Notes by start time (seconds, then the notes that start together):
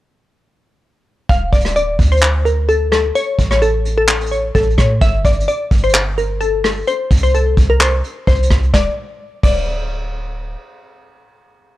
1.29 D1 F5, kick, closed hi-hat
1.53 D1 D5, kick, closed hi-hat
1.60 closed hi-hat
1.65 cross-stick, closed hi-hat
1.76 D5, closed hi-hat
1.99 D2, kick, closed hi-hat, open hi-hat
2.05 closed hi-hat
2.11 C5, closed hi-hat
2.17 closed hi-hat
2.22 clap
2.45 A#4, closed hi-hat
2.69 A4, closed hi-hat
2.92 A4, cross-stick
3.15 C#5, closed hi-hat
3.39 A1, kick, closed hi-hat
3.51 C#5, cross-stick
3.62 A4, closed hi-hat
3.85 closed hi-hat
3.98 A4
4.08 clap, closed hi-hat
4.15 closed hi-hat
4.21 closed hi-hat
4.26 closed hi-hat
4.32 C#5, closed hi-hat
4.55 A1 A4, kick, closed hi-hat
4.63 closed hi-hat
4.70 closed hi-hat
4.78 A2 C#5, kick, cross-stick, closed hi-hat
5.01 G1 E5, kick, closed hi-hat
5.25 G1 D5, kick, closed hi-hat
5.32 closed hi-hat
5.40 closed hi-hat
5.48 D5, closed hi-hat
5.71 G1, kick, closed hi-hat
5.77 closed hi-hat
5.84 C5, closed hi-hat
5.89 closed hi-hat
5.94 clap, closed hi-hat
6.18 A#4, closed hi-hat
6.41 A4, closed hi-hat
6.64 A4, cross-stick, open hi-hat
6.88 C5, closed hi-hat
7.11 C2, kick, closed hi-hat
7.17 closed hi-hat
7.23 C5, closed hi-hat
7.29 closed hi-hat
7.34 A4, closed hi-hat
7.57 C2, kick, closed hi-hat
7.70 A#4
7.81 C5, clap, closed hi-hat
8.04 closed hi-hat
8.27 C2 C5, kick, closed hi-hat
8.35 closed hi-hat
8.43 closed hi-hat
8.50 C2, kick, cross-stick
8.63 closed hi-hat
8.74 D1 D5, kick, snare
9.43 D1 D5, kick, crash